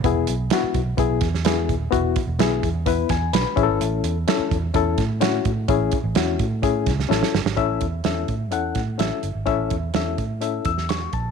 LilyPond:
<<
  \new Staff \with { instrumentName = "Reed electric piano" } { \time 4/4 \key a \major \tempo 4 = 127 << { r1 | r2 r8 gis''8 <b' b''>8 e''8 | r1 | r1 |
r1 | r2 r8 e'''8 cis'''8 a''8 | } \\ { <b e' gis'>8 r8 <b e' fis'>8 r8 <b e' gis'>8 r8 <b e' gis'>8 r8 | <b e' fis'>8 r8 <b e' gis'>8 r8 <b e' b'>8 r4 <cis' e' gis' a'>8~ | <cis' e' gis' a'>8 r8 <cis' e' a'>8 r8 <cis' e' a'>8 r8 <cis' e' fis'>8 r8 | <cis' e' gis'>8 r8 <cis' e' fis'>8 r8 <cis' e' gis'>8 r8 <cis' e' a'>8 r8 |
<cis' e' a' e''>8 r8 <cis' e' a' e''>8 r8 <cis' e' a' fis''>8 r8 <cis' e' a' e''>8 r8 | <cis' e' a' e''>8 r8 <cis' e' a' e''>8 r8 <cis' e' a' e''>8 r4. | } >> }
  \new Staff \with { instrumentName = "Fingered electric bass" } { \clef bass \time 4/4 \key a \major e,,8 b,,8 r8 b,,8 b,,8 e,4 dis,,8 | e,,8 r16 e,,16 b,,8 e,4 e,8 b,,16 r16 a,,16 gis,,16 | a,,8 e,8 r8 e,8 e,8 a,4 a,8 | a,,8 r16 a,,16 e,8 a,4 cis,8 a,,16 r16 g,,16 gis,,16 |
a,,8 e,8 e,8 a,8 e,8 a,8 a,,16 r16 g,,16 gis,,16 | a,,8 e,8 e,8 a,4 e,4 bes,,8 | }
  \new DrumStaff \with { instrumentName = "Drums" } \drummode { \time 4/4 <hh bd>8 hh8 <hh sn>8 <hh bd>8 <hh bd>8 <hh bd sn>16 sn16 <hh sn>8 <hh bd>8 | <hh bd>8 <hh bd>8 <hh sn>8 <hh bd>8 <hh bd>8 <hh bd sn>8 <hh sn>8 <hh bd>8 | hh8 hh8 <hh sn>8 <hh bd>8 <hh bd>8 <hh bd sn>8 <hh sn>8 <hh bd>8 | <hh bd>8 <hh bd>8 <hh sn>8 <hh bd>8 <hh bd>8 <hh bd sn>16 sn16 sn16 sn16 sn16 sn16 |
<hh bd>8 <hh bd>8 <hh sn>8 <hh bd>8 hh8 <hh bd sn>8 <hh sn>8 hh8 | <hh bd>8 <hh bd>8 <hh sn>8 <hh bd>8 hh8 <hh bd>16 sn16 <hh sn>8 <hh bd>8 | }
>>